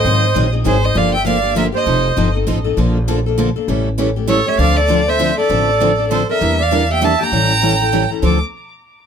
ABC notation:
X:1
M:3/4
L:1/8
Q:"Swing" 1/4=198
K:Dm
V:1 name="Violin"
_e3 z ^B ^d | f g f2 e _e- | _e3 z3 | z6 |
z4 ^c e | f d2 e2 d- | d4 c e- | e f2 g a b- |
b4- b z | d' z4 z |]
V:2 name="Accordion"
c3 z ^G ^B | d e d2 B c- | c3 z3 | z6 |
z4 A ^c | d A2 c2 A- | A4 A B- | B d2 e e g- |
g4- g z | A z4 z |]
V:3 name="Steel-string acoustic guitar"
[^D,^F,^B,^D^G] z [D,F,B,DG] [B,DG] [D,F,B,DG] [B,DG] | [D,F,B,DG] z [D,F,B,DG] [B,DG] [D,F,B,DG] [B,DG] | [F,C_EA] z [F,CEA] [CEA] [F,CEA] [CEA] | [D,F,B,DA] z [D,F,B,DA] [B,DA] [D,F,B,DA] [B,DA] |
[^C,E,A,^CG] z [C,E,A,CG] [A,CG] [C,E,A,CG] [A,CG] | [D,F,CDA] z [D,F,CDA] [CDA] [D,F,CDA] [CDA] | [D,F,CDA] z [D,F,CDA] [CDA] [D,F,CDA] [CDA] | [E,B,DG] z [E,B,DG] [B,DG] [E,B,DG] [B,DG] |
[E,G,^CEA] z [E,G,CEA] [CEA] [E,G,CEA] [CEA] | [D,F,CDA] z4 z |]
V:4 name="Steel-string acoustic guitar"
[^D,^F,^B,^D^G] z [D,F,B,DG] z [D,F,B,DG] z | [D,F,B,DG] z [D,F,B,DG] z [D,F,B,DG] z | [F,C_EA] z [F,CEA] z [F,CEA] z | [D,F,B,DA] z [D,F,B,DA] z [D,F,B,DA] z |
[E,G,^CEA] z [E,G,CEA] z [E,G,CEA] z | [D,F,CDA] z [D,F,CDA] z [D,F,CDA] z | [D,F,CDA] z [D,F,CDA] z [D,F,CDA] z | [E,G,DEB] z [E,G,DEB] z [E,G,DEB] z |
[E,G,^CEA] z [E,G,CEA] z [E,G,CEA] z | [D,F,CDA] z4 z |]
V:5 name="Upright bass" clef=bass
^G,,,2 ^A,,,2 G,,,2 | G,,,6 | F,,,2 G,,,2 A,,,2 | B,,,6 |
A,,,6 | D,,6 | A,,,6 | E,,6 |
A,,,6 | D,, z4 z |]